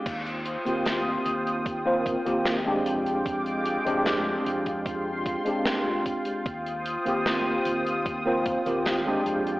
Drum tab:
CC |x---------------|----------------|----------------|
HH |xxxxx-xxx-xxx-xx|xxxxx-xxx-xxx-xx|xxxxx-xxx-xxx-xx|
SD |----o-------o---|----o-------o---|----o-------o---|
BD |o-------o-o-----|o------oo-o---o-|o-------o-o-----|